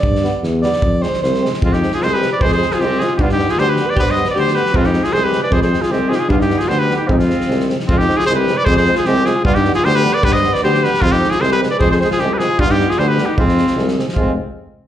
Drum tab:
SD |-oo-o-oo|--oooooo|-oooo-o-|-oooo-o-|
BD |o-------|o-------|o-------|o-------|

SD |-oooo-o-|-ooooooo|-oooo-o-|-oooo-o-|
BD |o-------|o-------|o-------|o-------|

SD |-oooo-o-|-ooooooo|-oooo-o-|-oooo-o-|
BD |o-------|o-------|o-------|o-------|

SD |-oooo-o-|-ooooooo|-oooo-o-|-oooo-o-|
BD |o-------|o-------|o-------|o-------|

SD |-oooo-o-|-ooooooo|--------|
BD |o-------|o-------|o-------|